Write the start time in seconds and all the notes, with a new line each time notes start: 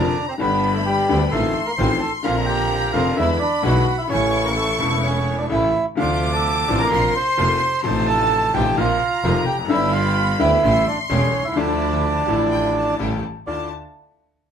Already playing: F1 F2 D3 F3 A#3 D4 F4 D5 A#5
0.29 C4 C5
0.38 G1 G2 D3 G3 B3 D4 G4 B4 B5
0.74 A3 A4
0.86 G3 G4
1.09 D2 D3 G3 B3 D4 G4
1.20 G3 G4
1.31 A1 A2 D#3 F3 A3 C4 D#4 F4 A4 C6
1.66 A#3 A#4
1.77 A1 A2 D#3 F3 A3 C4 D#4 F4 C5
2.00 A4 A5
2.23 A#1 A#2 D3 A#3 C4 D4 F4 F5 A#5
2.46 G4 G5
2.93 F1 F2 D3 A#3 C4 D4 F4 F5
3.17 E2 D3 E3 G#3 B3 D4 E4 E5 B5
3.39 D4 D5
3.62 B1 B2 D3 G#3 B3 D4 E4 F#4 F#5
3.98 E4 E5
4.07 A1 A2 C#3 E3 A3 C#4 E4 C#5 C#6
4.12 C#4 E4
4.45 A#3 A#4
4.56 A3 A4
4.78 E1 E2 C#3 E3 A3 C#4 E4
4.91 A3 A4
5.04 C#4 C#5
5.38 D4 D5
5.49 A1 A2 C#3 E3 A3 C#4 E4 E5
5.54 E4
5.95 D2 C3 D3 F3 A3 C4 D4 F4 F5 D6
6.00 D2 F4
6.33 A4 A5
6.68 A1 A2 C3 F3 A3 C4 D4 F4
6.80 A#4 A#5
6.91 A#1 A#2 C3 F3 A#3 C4 F4 C6
7.14 C5 C6
7.37 F1 F2 C3 F3 A#3 C4 F4
7.83 A1 A2 C3 F3 A3 D#4 F4 C5 A5 C6
7.87 D#4
8.07 A4 A5
8.54 A1 A2 C3 F3 A3 D#4 F4 G4 G5
8.77 A#1 A#2 C3 F3 A#3 C4 F4 F5 A#5
9.23 F1 F2 C3 F3 A#3 C4 F4
9.46 F1 G4 G5
9.53 E2
9.59 F2
9.65 F#2 D3
9.69 G1 G2 G3 B3 D4 E4 G4 E5 B5
9.92 F4 F5
10.39 D2 D3 G3 B3 E4 G4 E5
10.62 A1 A2 C#3 G3 A3 C#4 E4 G4 C6
10.87 D4 D5
11.09 E1 E2 C#3 G3 A3 C#4 E4 G4 C#5
11.33 C2
11.39 B1
11.44 C2 E4 E5
11.52 C#2 D3
11.56 D2 F3 A3 D4 E4 D5 A5
12.04 A5
12.26 A1 A2 D3 F3 A3 D4 E4
12.30 E4
12.51 G5
12.76 A5
12.98 A1 A2 C#3 G3 A3 C#4 E4 G4
13.46 D2 D4 E4 F4 D5 A5